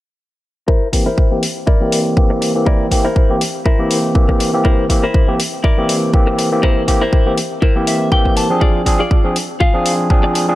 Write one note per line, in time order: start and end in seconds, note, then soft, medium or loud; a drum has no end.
0.68 0.87 E4 medium
0.68 0.87 A#4 medium
0.68 0.87 C5 loud
0.68 kick loud
0.93 1.06 E3 medium
0.93 1.06 A#3 medium
0.93 1.07 C4 medium
0.93 1.07 G4 medium
0.93 kick medium
0.93 open hi-hat medium
1.06 1.37 E4 medium
1.06 1.37 A#4 medium
1.06 1.37 C5 medium
1.18 kick loud
1.31 1.42 E3 medium
1.31 1.42 A#3 medium
1.31 1.43 C4 medium
1.31 1.43 G4 medium
1.43 open hi-hat medium
1.67 1.99 E4 medium
1.67 1.99 A#4 medium
1.67 1.99 D5 medium
1.67 kick loud
1.81 2.14 E3 medium
1.81 2.14 A#3 medium
1.81 2.14 C4 medium
1.81 2.15 G4 medium
1.92 open hi-hat medium
2.16 2.52 E3 medium
2.16 2.52 A#3 medium
2.16 2.52 C4 medium
2.16 2.52 G4 medium
2.16 kick loud
2.30 muted clean electric guitar stroke medium
2.41 muted clean electric guitar stroke soft
2.41 open hi-hat medium
2.55 2.88 E3 medium
2.55 2.89 A#3 medium
2.55 2.89 C4 medium
2.55 2.89 G4 medium
2.66 2.86 E4 medium
2.66 2.86 A#4 medium
2.66 2.86 D5 loud
2.66 kick loud
2.91 3.05 E3 medium
2.91 3.05 A#3 medium
2.91 3.05 C4 medium
2.91 3.05 G4 loud
2.91 kick medium
2.91 open hi-hat medium
3.05 3.35 E4 medium
3.05 3.35 A#4 medium
3.05 3.35 C5 medium
3.16 kick loud
3.29 3.41 E3 medium
3.29 3.41 A#3 medium
3.29 3.41 C4 medium
3.29 3.41 G4 medium
3.41 open hi-hat medium
3.66 3.97 E4 medium
3.66 3.97 A#4 medium
3.66 3.98 C5 medium
3.66 kick loud
3.79 4.12 E3 medium
3.79 4.12 A#3 medium
3.79 4.13 C4 medium
3.79 4.13 G4 medium
3.91 open hi-hat medium
4.15 4.50 E3 medium
4.15 4.50 A#3 medium
4.15 4.50 C4 medium
4.15 4.51 G4 medium
4.15 kick loud
4.29 muted clean electric guitar stroke medium
4.29 kick medium
4.40 muted clean electric guitar stroke soft
4.40 open hi-hat medium
4.53 4.87 E3 medium
4.53 4.87 A#3 medium
4.53 4.87 C4 medium
4.53 4.87 G4 medium
4.65 4.84 E4 medium
4.65 4.84 A#4 medium
4.65 4.84 C5 loud
4.65 kick loud
4.89 5.03 E3 medium
4.89 5.03 A#3 medium
4.89 5.03 C4 medium
4.89 5.04 G4 loud
4.89 kick medium
4.89 open hi-hat loud
5.03 5.34 E4 medium
5.03 5.34 A#4 medium
5.03 5.34 C5 medium
5.14 kick loud
5.28 5.39 E3 medium
5.28 5.39 A#3 medium
5.28 5.39 C4 medium
5.28 5.39 G4 loud
5.40 open hi-hat medium
5.64 5.95 E4 medium
5.64 5.96 A#4 medium
5.64 5.96 D5 medium
5.64 kick loud
5.77 6.11 E3 medium
5.77 6.11 A#3 medium
5.77 6.11 C4 medium
5.77 6.11 G4 loud
5.89 open hi-hat loud
6.13 6.49 E3 medium
6.13 6.49 A#3 medium
6.13 6.49 C4 medium
6.13 6.49 G4 medium
6.13 kick loud
6.27 muted clean electric guitar stroke medium
6.38 muted clean electric guitar stroke soft
6.38 open hi-hat medium
6.52 6.85 E3 medium
6.52 6.85 A#3 medium
6.52 6.85 C4 medium
6.52 6.86 G4 medium
6.63 6.82 E4 medium
6.63 6.82 A#4 loud
6.63 6.83 C5 loud
6.63 kick loud
6.87 7.01 E3 medium
6.87 7.01 A#3 medium
6.87 7.02 C4 medium
6.87 7.02 G4 loud
6.87 kick medium
6.87 open hi-hat loud
7.01 7.32 E4 medium
7.01 7.32 A#4 medium
7.01 7.32 C5 medium
7.13 kick loud
7.26 7.37 E3 medium
7.26 7.37 A#3 medium
7.26 7.38 C4 medium
7.26 7.38 G4 medium
7.38 open hi-hat medium
7.62 7.94 E4 medium
7.62 7.94 A#4 medium
7.62 7.94 C5 medium
7.62 kick loud
7.75 8.09 E3 medium
7.75 8.09 A#3 medium
7.75 8.09 C4 medium
7.75 8.09 G4 medium
7.87 8.10 E5 medium
7.87 open hi-hat loud
8.12 8.47 E3 medium
8.12 8.47 A#3 medium
8.12 8.47 C4 medium
8.12 8.47 G4 medium
8.12 8.35 G5 medium
8.12 kick loud
8.25 muted clean electric guitar stroke medium
8.25 kick medium
8.36 8.60 A5 medium
8.36 muted clean electric guitar stroke soft
8.36 open hi-hat medium
8.50 8.83 F3 medium
8.50 8.84 C4 medium
8.50 8.84 D4 medium
8.50 8.84 G#4 medium
8.61 8.81 F4 loud
8.61 8.81 G#4 medium
8.61 8.81 D5 loud
8.61 kick loud
8.86 8.99 F3 medium
8.86 9.00 C4 medium
8.86 9.00 D4 medium
8.86 9.00 G#4 loud
8.86 kick medium
8.86 open hi-hat medium
8.99 9.30 F4 medium
8.99 9.30 G#4 medium
8.99 9.30 D5 medium
9.11 kick loud
9.24 9.35 F3 medium
9.24 9.36 C4 medium
9.24 9.36 D4 medium
9.24 9.36 G#4 medium
9.36 open hi-hat medium
9.60 9.92 F4 medium
9.60 9.92 G#4 medium
9.60 9.92 F5 medium
9.60 kick loud
9.74 10.07 F3 medium
9.74 10.07 C4 medium
9.74 10.08 D4 medium
9.74 10.08 G#4 loud
9.86 open hi-hat medium
10.10 10.45 F3 medium
10.10 10.45 C4 medium
10.10 10.45 D4 medium
10.10 10.46 G#4 medium
10.10 kick loud
10.23 muted clean electric guitar stroke medium
10.35 muted clean electric guitar stroke soft
10.35 open hi-hat medium
10.48 10.55 F3 medium
10.48 10.55 C4 medium
10.48 10.55 D4 medium
10.48 10.55 G#4 medium